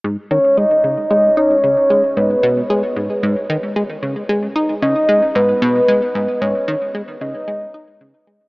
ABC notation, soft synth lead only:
X:1
M:4/4
L:1/8
Q:1/4=113
K:G#m
V:1 name="Soft synth lead"
z c d2 d c3 | B3 z4 z | z2 d2 B4 | c2 z d4 z |]